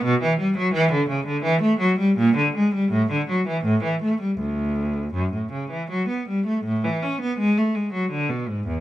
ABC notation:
X:1
M:3/4
L:1/16
Q:1/4=81
K:D
V:1 name="Cello" clef=bass
B,, E, G, F, E, D, C, D, E, A, F, G, | _B,, D, _A, G, =A,, D, F, E, A,, E, =A, G, | D,,4 F,, A,, C, E, F, B, G, A, | [K:A] A,, E, C B, G, A, G, F, D, B,, G,, E,, |]